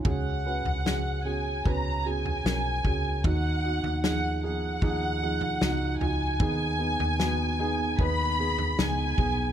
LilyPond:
<<
  \new Staff \with { instrumentName = "Violin section" } { \time 4/4 \key cis \mixolydian \tempo 4 = 76 fis''4. gis''8 ais''8 gis''4. | fis''4 fis''8 fis''2 gis''8~ | gis''2 b''4 gis''4 | }
  \new Staff \with { instrumentName = "Felt piano" } { \time 4/4 \key cis \mixolydian <cis' fis' gis'>8 <cis' fis' b'>8 <cis' fis' gis'>8 <cis' fis' gis'>8 <cis' fis' b'>8 <cis' fis' gis'>8 <cis' fis' ais'>8 <cis' fis' gis'>8 | <dis' fis'>8 <dis' fis'>8 <eis dis' gis'>8 <eis dis' gis'>8 <eis dis' gis'>8 <eis dis' gis'>8 <dis' fis'>8 <dis' eis' fis'>8 | <b dis' gis'>8 <b dis' gis'>8 <b dis' fis'>8 <b dis' gis'>8 <b dis' b'>8 <b dis' gis'>8 <b dis' gis'>8 <b dis' gis'>8 | }
  \new Staff \with { instrumentName = "Felt piano" } { \clef bass \time 4/4 \key cis \mixolydian cis4. r2 r8 | dis4. r2 r8 | dis4. r2 r8 | }
  \new Staff \with { instrumentName = "Fingered electric bass" } { \clef bass \time 4/4 \key cis \mixolydian cis,8. cis,4~ cis,16 cis,4 b,,8 cis,8 | dis,8. dis,4~ dis,16 dis,4 cis,8 cis,8 | dis,8. dis,4~ dis,16 dis,4 cis,8 b,,8 | }
  \new DrumStaff \with { instrumentName = "Drums" } \drummode { \time 4/4 <bd tomfh>8. tomfh16 sn4 <bd tomfh>8. tomfh16 sn8 <bd tomfh>8 | <bd tomfh>8. tomfh16 sn4 <bd tomfh>8. tomfh16 sn8 tomfh8 | <bd tomfh>8. tomfh16 sn4 <bd tomfh>8. tomfh16 sn8 <bd tomfh>8 | }
>>